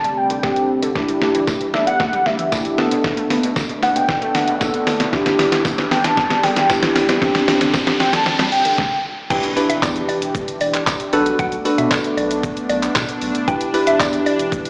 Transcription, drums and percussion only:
0.04 closed hi-hat medium
0.30 closed hi-hat medium
0.43 kick loud
0.43 snare medium
0.56 closed hi-hat medium
0.83 closed hi-hat medium
0.96 kick loud
0.96 snare medium
1.09 closed hi-hat medium
1.22 snare medium
1.35 closed hi-hat medium
1.47 kick loud
1.47 snare medium
1.47 tambourine medium
1.61 closed hi-hat medium
1.74 snare medium
1.87 closed hi-hat medium
2.00 kick loud
2.00 snare medium
2.13 closed hi-hat medium
2.26 snare medium
2.39 closed hi-hat medium
2.52 kick loud
2.52 snare medium
2.52 tambourine medium
2.65 closed hi-hat medium
2.78 snare medium
2.91 closed hi-hat medium
3.04 kick loud
3.04 snare medium
3.17 closed hi-hat medium
3.30 snare medium
3.30 open hi-hat medium
3.43 closed hi-hat medium
3.56 kick loud
3.56 snare loud
3.56 tambourine medium
3.69 closed hi-hat medium
3.83 snare medium
3.83 open hi-hat medium
3.96 closed hi-hat medium
4.09 kick loud
4.09 snare loud
4.22 closed hi-hat medium
4.35 snare medium
4.35 open hi-hat medium
4.48 closed hi-hat medium
4.61 kick loud
4.61 snare loud
4.61 tambourine medium
4.74 closed hi-hat medium
4.87 snare loud
4.87 open hi-hat medium
5.00 snare loud
5.00 closed hi-hat medium
5.13 kick loud
5.13 snare loud
5.26 snare loud
5.26 closed hi-hat medium
5.39 snare loud
5.39 open hi-hat medium
5.52 snare loud
5.52 closed hi-hat medium
5.65 kick loud
5.65 snare loud
5.65 tambourine medium
5.78 snare loud
5.78 closed hi-hat medium
5.91 snare loud
5.91 open hi-hat medium
6.04 snare loud
6.04 closed hi-hat medium
6.17 kick loud
6.17 snare loud
6.30 snare loud
6.30 closed hi-hat medium
6.43 snare loud
6.43 open hi-hat medium
6.56 snare loud
6.56 closed hi-hat medium
6.69 kick loud
6.69 snare loud
6.69 tambourine medium
6.83 snare loud
6.83 closed hi-hat medium
6.96 snare loud
6.96 open hi-hat medium
7.09 snare loud
7.09 closed hi-hat medium
7.22 kick loud
7.22 snare loud
7.35 snare loud
7.35 closed hi-hat medium
7.48 snare loud
7.48 open hi-hat medium
7.61 snare loud
7.61 closed hi-hat medium
7.74 kick loud
7.74 snare loud
7.74 tambourine medium
7.87 snare loud
7.87 closed hi-hat medium
8.00 snare loud
8.00 open hi-hat medium
8.13 snare loud
8.13 closed hi-hat medium
8.26 snare loud
8.39 snare loud
8.39 closed hi-hat medium
8.52 open hi-hat medium
8.65 closed hi-hat medium
8.78 kick loud
8.78 snare medium
9.30 kick loud
9.30 crash loud
9.30 shaker medium
9.43 closed hi-hat medium
9.43 shaker medium
9.57 open hi-hat medium
9.57 shaker medium
9.70 closed hi-hat medium
9.70 shaker medium
9.82 kick loud
9.82 clap loud
9.82 tambourine medium
9.82 shaker medium
9.96 closed hi-hat medium
9.96 shaker medium
10.09 open hi-hat medium
10.09 shaker soft
10.22 closed hi-hat medium
10.22 shaker medium
10.35 kick loud
10.35 shaker medium
10.48 closed hi-hat medium
10.48 shaker medium
10.61 open hi-hat medium
10.61 shaker medium
10.74 clap medium
10.74 closed hi-hat medium
10.74 shaker medium
10.87 kick loud
10.87 clap loud
10.87 tambourine loud
10.87 shaker medium
11.00 closed hi-hat medium
11.00 shaker medium
11.13 open hi-hat medium
11.13 shaker medium
11.26 closed hi-hat medium
11.26 shaker medium
11.39 kick loud
11.39 shaker medium
11.52 closed hi-hat medium
11.52 shaker medium
11.65 open hi-hat medium
11.65 shaker medium
11.78 closed hi-hat medium
11.78 shaker medium
11.91 kick loud
11.91 clap loud
11.91 tambourine medium
11.91 shaker medium
12.04 closed hi-hat medium
12.04 shaker medium
12.18 open hi-hat medium
12.18 shaker medium
12.31 closed hi-hat medium
12.31 shaker medium
12.43 kick loud
12.43 shaker medium
12.57 closed hi-hat medium
12.57 shaker medium
12.69 open hi-hat medium
12.69 shaker medium
12.82 clap medium
12.82 closed hi-hat medium
12.82 shaker medium
12.96 kick loud
12.96 clap loud
12.96 tambourine loud
12.96 shaker medium
13.09 closed hi-hat medium
13.09 shaker medium
13.21 open hi-hat medium
13.21 shaker medium
13.35 closed hi-hat medium
13.35 shaker medium
13.48 kick loud
13.48 shaker medium
13.61 closed hi-hat medium
13.61 shaker medium
13.74 open hi-hat medium
13.74 shaker medium
13.87 closed hi-hat medium
13.87 shaker medium
14.00 kick loud
14.00 clap loud
14.00 tambourine medium
14.00 shaker medium
14.13 closed hi-hat medium
14.13 shaker medium
14.26 open hi-hat medium
14.26 shaker soft
14.39 closed hi-hat medium
14.39 shaker medium
14.52 kick loud
14.52 shaker medium
14.65 closed hi-hat medium
14.65 shaker medium

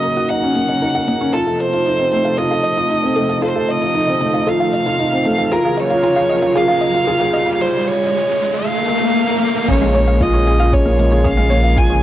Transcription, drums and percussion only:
0.03 closed hi-hat medium
0.17 closed hi-hat soft
0.29 closed hi-hat soft
0.55 closed hi-hat medium
0.69 closed hi-hat soft
0.82 closed hi-hat soft
1.08 closed hi-hat medium
1.21 closed hi-hat soft
1.34 closed hi-hat soft
1.60 closed hi-hat medium
1.73 closed hi-hat soft
1.86 closed hi-hat soft
2.12 closed hi-hat medium
2.25 closed hi-hat soft
2.38 closed hi-hat soft
2.64 closed hi-hat medium
2.77 closed hi-hat soft
2.90 closed hi-hat soft
3.16 closed hi-hat medium
3.30 closed hi-hat soft
3.43 closed hi-hat soft
3.68 closed hi-hat medium
3.82 closed hi-hat soft
3.95 closed hi-hat soft
4.21 closed hi-hat medium
4.34 closed hi-hat soft
4.47 closed hi-hat soft
4.73 closed hi-hat medium
4.86 closed hi-hat soft
4.99 closed hi-hat soft
5.25 closed hi-hat medium
5.38 closed hi-hat soft
5.52 closed hi-hat soft
5.77 closed hi-hat medium
5.90 closed hi-hat soft
6.03 closed hi-hat soft
6.30 closed hi-hat medium
6.43 closed hi-hat soft
6.56 closed hi-hat soft
6.82 closed hi-hat medium
6.95 closed hi-hat soft
7.08 closed hi-hat soft
7.34 closed hi-hat medium
7.46 closed hi-hat soft
9.68 kick loud
9.68 closed hi-hat soft
9.82 closed hi-hat soft
9.95 closed hi-hat medium
10.08 closed hi-hat soft
10.21 kick loud
10.21 closed hi-hat soft
10.34 closed hi-hat soft
10.47 closed hi-hat medium
10.61 closed hi-hat soft
10.73 kick loud
10.73 closed hi-hat soft
10.86 closed hi-hat soft
10.99 closed hi-hat medium
11.12 closed hi-hat soft
11.25 kick loud
11.25 closed hi-hat soft
11.38 closed hi-hat soft
11.51 closed hi-hat medium
11.64 closed hi-hat soft
11.77 kick loud
11.77 closed hi-hat soft
11.90 closed hi-hat soft

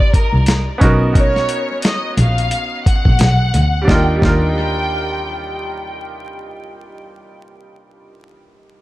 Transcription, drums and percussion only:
0.14 kick medium
0.14 closed hi-hat medium
0.46 snare loud
0.46 closed hi-hat loud
0.81 kick medium
0.81 closed hi-hat medium
1.15 kick loud
1.15 closed hi-hat loud
1.36 snare soft
1.49 closed hi-hat medium
1.82 snare loud
1.82 closed hi-hat medium
2.17 closed hi-hat medium
2.38 closed hi-hat soft
2.51 closed hi-hat loud
2.86 kick medium
2.86 closed hi-hat medium
3.05 kick medium
3.19 snare loud
3.19 closed hi-hat loud
3.54 closed hi-hat medium
3.88 kick loud
3.88 snare medium
4.22 kick loud
4.22 snare medium

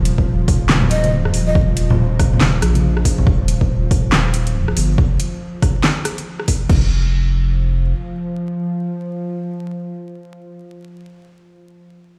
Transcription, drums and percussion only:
0.05 closed hi-hat medium
0.18 kick medium
0.48 kick loud
0.48 open hi-hat medium
0.69 snare loud
0.69 clap medium
0.69 high conga medium
0.82 low conga medium
0.91 closed hi-hat medium
1.04 closed hi-hat soft
1.04 high conga medium
1.25 cross-stick medium
1.34 open hi-hat loud
1.55 kick loud
1.77 closed hi-hat medium
1.90 low conga loud
2.20 kick loud
2.20 cross-stick medium
2.20 open hi-hat medium
2.33 low conga medium
2.41 snare loud
2.41 clap medium
2.41 high conga medium
2.62 cross-stick medium
2.62 closed hi-hat medium
2.75 closed hi-hat soft
2.75 high conga medium
2.97 cross-stick medium
3.05 kick medium
3.05 open hi-hat loud
3.18 low conga medium
3.27 kick loud
3.48 closed hi-hat medium
3.61 kick medium
3.91 kick loud
3.91 open hi-hat medium
4.12 snare loud
4.12 clap medium
4.34 closed hi-hat medium
4.47 closed hi-hat soft
4.68 cross-stick medium
4.77 open hi-hat loud
4.98 kick loud
5.20 closed hi-hat medium
5.62 kick loud
5.62 cross-stick medium
5.62 open hi-hat medium
5.84 snare loud
5.84 clap medium
6.05 cross-stick medium
6.05 closed hi-hat medium
6.18 closed hi-hat soft
6.40 cross-stick medium
6.48 kick medium
6.48 open hi-hat loud
6.69 kick loud
6.69 crash medium

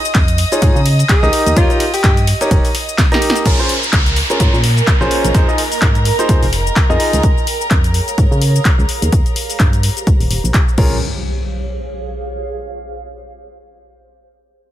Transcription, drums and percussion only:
0.05 shaker medium
0.15 kick loud
0.15 snare loud
0.15 clap loud
0.15 closed hi-hat medium
0.15 ride medium
0.15 shaker medium
0.28 closed hi-hat medium
0.28 shaker soft
0.38 closed hi-hat medium
0.38 open hi-hat loud
0.38 ride medium
0.52 closed hi-hat soft
0.52 shaker medium
0.62 kick loud
0.62 closed hi-hat medium
0.62 ride medium
0.62 shaker medium
0.76 shaker soft
0.86 closed hi-hat medium
0.86 open hi-hat loud
0.86 ride medium
0.99 closed hi-hat soft
0.99 shaker medium
1.09 kick loud
1.09 snare loud
1.09 clap loud
1.09 closed hi-hat medium
1.09 ride medium
1.09 shaker medium
1.23 snare medium
1.23 shaker soft
1.33 closed hi-hat medium
1.33 open hi-hat loud
1.33 ride medium
1.46 closed hi-hat medium
1.46 shaker medium
1.57 kick loud
1.57 closed hi-hat medium
1.57 ride medium
1.57 shaker medium
1.70 closed hi-hat soft
1.70 shaker soft
1.80 closed hi-hat medium
1.80 open hi-hat loud
1.80 ride medium
1.94 open hi-hat medium
1.94 shaker medium
2.04 kick loud
2.04 snare loud
2.04 clap loud
2.04 closed hi-hat medium
2.04 ride medium
2.04 shaker medium
2.17 closed hi-hat medium
2.17 shaker soft
2.27 closed hi-hat medium
2.27 open hi-hat loud
2.27 ride medium
2.41 snare medium
2.41 closed hi-hat soft
2.41 shaker medium
2.51 kick loud
2.51 closed hi-hat medium
2.51 ride medium
2.51 shaker medium
2.65 open hi-hat medium
2.65 shaker soft
2.75 snare soft
2.75 closed hi-hat medium
2.75 open hi-hat loud
2.75 ride medium
2.89 shaker medium
2.98 kick loud
2.98 snare loud
2.98 snare medium
2.98 clap loud
2.98 closed hi-hat medium
2.98 ride medium
2.98 shaker medium
3.12 snare medium
3.12 closed hi-hat soft
3.12 shaker soft
3.22 open hi-hat loud
3.22 ride medium
3.30 snare loud
3.36 closed hi-hat medium
3.36 shaker medium
3.46 kick loud
3.46 closed hi-hat medium
3.46 crash medium
3.46 shaker medium
3.60 shaker soft
3.69 closed hi-hat medium
3.69 open hi-hat loud
3.83 shaker medium
3.93 kick loud
3.93 snare loud
3.93 clap loud
3.93 closed hi-hat medium
3.93 shaker medium
4.06 closed hi-hat medium
4.06 shaker soft
4.16 closed hi-hat medium
4.16 open hi-hat loud
4.30 closed hi-hat soft
4.30 shaker medium
4.40 kick loud
4.40 closed hi-hat medium
4.40 shaker medium
4.54 shaker soft
4.64 closed hi-hat medium
4.64 open hi-hat loud
4.77 closed hi-hat soft
4.77 shaker medium
4.87 kick loud
4.87 snare loud
4.87 clap loud
4.87 closed hi-hat medium
4.87 shaker medium
5.01 snare soft
5.01 shaker soft
5.11 closed hi-hat medium
5.11 open hi-hat loud
5.25 closed hi-hat medium
5.25 shaker medium
5.34 kick loud
5.34 closed hi-hat medium
5.34 shaker medium
5.49 shaker soft
5.58 closed hi-hat medium
5.58 open hi-hat loud
5.72 open hi-hat medium
5.72 shaker medium
5.82 kick loud
5.82 snare loud
5.82 clap loud
5.82 closed hi-hat medium
5.82 shaker medium
5.95 closed hi-hat soft
5.95 shaker soft
6.05 closed hi-hat medium
6.05 open hi-hat loud
6.19 snare soft
6.19 closed hi-hat soft
6.19 shaker medium
6.29 kick loud
6.29 closed hi-hat medium
6.29 shaker medium
6.43 open hi-hat medium
6.43 shaker soft
6.53 snare soft
6.53 closed hi-hat medium
6.53 open hi-hat loud
6.67 shaker medium
6.76 kick loud
6.76 snare loud
6.76 clap loud
6.76 closed hi-hat medium
6.76 shaker medium
6.91 shaker soft
7.00 open hi-hat medium
7.00 open hi-hat loud
7.13 closed hi-hat medium
7.13 shaker medium
7.23 kick loud
7.23 closed hi-hat medium
7.23 shaker medium
7.38 shaker soft
7.47 open hi-hat loud
7.61 shaker medium
7.71 kick loud
7.71 clap loud
7.71 closed hi-hat medium
7.71 shaker medium
7.84 closed hi-hat soft
7.84 shaker soft
7.94 open hi-hat loud
8.08 closed hi-hat soft
8.08 shaker medium
8.18 kick loud
8.18 closed hi-hat medium
8.18 shaker medium
8.32 shaker soft
8.42 open hi-hat loud
8.56 shaker medium
8.65 kick loud
8.65 clap loud
8.65 closed hi-hat medium
8.65 shaker medium
8.79 shaker soft
8.89 open hi-hat loud
9.02 closed hi-hat medium
9.02 shaker medium
9.12 kick loud
9.12 closed hi-hat medium
9.12 shaker medium
9.26 closed hi-hat soft
9.26 shaker soft
9.36 open hi-hat loud
9.50 open hi-hat medium
9.50 shaker medium
9.60 kick loud
9.60 clap loud
9.60 closed hi-hat medium
9.60 shaker medium
9.73 closed hi-hat soft
9.73 shaker soft
9.83 open hi-hat loud
9.97 closed hi-hat soft
9.97 shaker medium
10.07 kick loud
10.07 closed hi-hat medium
10.07 shaker medium
10.20 open hi-hat medium
10.20 shaker soft
10.31 open hi-hat loud
10.45 shaker medium
10.54 kick loud
10.54 clap loud
10.54 closed hi-hat medium
10.54 shaker medium
10.68 shaker soft
10.78 kick loud
10.78 crash medium

